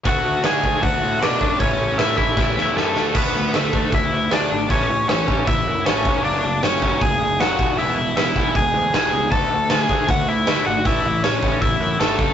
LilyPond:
<<
  \new Staff \with { instrumentName = "Lead electric guitar" } { \time 4/4 \key a \major \tempo 4 = 156 <fis' fis''>4 <gis' gis''>4 <fis' fis''>4 <d' d''>4 | <cis' cis''>4 <e' e''>8 <e' e''>4. <a a'>4 | <b b'>4 <a a'>4 <e' e''>4 <d' d''>4 | <cis' cis''>4 <cis' cis''>4 <e' e''>4 <cis' cis''>4 |
<d' d''>4 <cis' cis''>4 <gis' gis''>4 <fis' fis''>4 | <e' e''>4 <e' e''>4 <gis' gis''>4 <gis' gis''>4 | <a' a''>4 <gis' gis''>4 <fis' fis''>8 <e' e''>4 <fis' fis''>8 | <e' e''>4 <cis' cis''>4 <e' e''>4 <a a'>4 | }
  \new Staff \with { instrumentName = "Distorted electric guitar" } { \clef bass \time 4/4 \key a \major <d a d' fis'>4 <d a d' fis'>8 <d a d' fis'>8 <d a d' fis'>4 <d a d' fis'>8 <d a d' fis'>8 | <a, e a cis' e'>4 <a, e a cis' e'>8 <a, e a cis' e'>8 <a, e a cis' e'>4 <a, e a cis' e'>8 <d a d' fis'>8 | <d a d'>8 <d a>8 <d a>8 <d a d'>8 <d a>8 <d a>8 <d a d'>8 <d a>8 | <a, e a>8 <a, e>8 <a, e>8 <a, e a>8 <a, e>8 <a, e>8 <a, e a>8 <fis a cis'>8 |
<fis a cis'>8 <fis a>8 <fis a>8 <fis a cis'>8 <fis a>8 <fis a>8 <fis a cis'>8 <e gis b>8 | <e gis b>8 <e gis>8 <e gis>8 <e gis b>8 <e gis>8 <e gis>8 <e gis b>8 <e gis>8 | <d a d'>8 <d a>8 <d a>8 <d a d'>8 <d a>8 <d a>8 <d a d'>8 <d a>8 | <a, e a>8 <a, e>8 <a, e>8 <a, e a>8 <a, e>8 <a, e>8 <a, e a>8 <fis a cis'>8 | }
  \new Staff \with { instrumentName = "Distorted electric guitar" } { \clef bass \time 4/4 \key a \major <d a d'>4 <d a d'>8 <d a d'>8 <d a d'>4 <d a d'>8 <d a d'>8 | <a, e a>4 <a, e a>8 <a, e a>8 <a, e a>4 <a, e a>8 <d a d'>8 | <d a d'>8 <d a>8 <d a>8 <d a d'>8 <d a>8 <d a>8 <d a d'>8 <d a>8 | <a, e a>8 <a, e>8 <a, e>8 <a, e a>8 <a, e>8 <a, e>8 <a, e a>8 <fis, cis fis>8 |
<fis, cis fis>8 <fis, cis>8 <fis, cis>8 <fis, cis fis>8 <fis, cis>8 <fis, cis>8 <fis, cis fis>8 <e, b, e>8 | <e, b, e>8 <e, b,>8 <e, b,>8 <e, b, e>8 <e, b,>8 <e, b,>8 <e, b, e>8 <e, b,>8 | <d a d'>8 <d a>8 <d a>8 <d a d'>8 <d a>8 <d a>8 <d a d'>8 <d a>8 | <a, e a>8 <a, e>8 <a, e>8 <a, e a>8 <a, e>8 <a, e>8 <a, e a>8 <fis, cis fis>8 | }
  \new Staff \with { instrumentName = "Picked electric bass" } { \clef bass \time 4/4 \key a \major d,8 d,8 d8 d,8 d,8 a,8 b,8 fis,8 | a,,8 a,,8 a,8 a,,8 a,,8 e,8 fis,8 d,8 | d,8 d,8 d,8 d,8 d,8 d,8 d,8 gis,,8 | a,,8 a,,8 a,,8 a,,8 a,,8 fis,8 a,,8 fis,,8 |
fis,,8 fis,,8 fis,,8 fis,,8 fis,,8 fis,,8 fis,,8 e,,8 | e,,8 e,,8 e,,8 e,,8 e,,8 d,8 e,,8 cis,8 | d,8 d,8 d,8 d,8 d,8 d,8 d,8 gis,,8 | a,,8 a,,8 a,,8 a,,8 a,,8 fis,8 gis,,8 fis,,8 | }
  \new DrumStaff \with { instrumentName = "Drums" } \drummode { \time 4/4 <hho bd>4 <hho sn>8 bd8 <hho bd>4 <hho sn>8 bd8 | <hho bd>4 <hho sn>8 bd8 <bd sn>8 sn8 sn8 sn8 | <cymc bd>4 <hho sn>8 bd8 <hho bd>4 <hho sn>4 | <hho bd>4 <hho sn>8 bd8 <hho bd>4 <hho sn>8 bd8 |
hho4 <hho sn>8 bd8 <hho bd>4 <hho sn>8 bd8 | hho4 <hho sn>8 bd8 <hho bd>4 <hho sn>4 | <hho bd>4 <hho sn>8 bd8 <hho bd>4 <hho sn>4 | <hho bd>4 <hho sn>8 bd8 <hho bd>4 <hho sn>8 bd8 | }
>>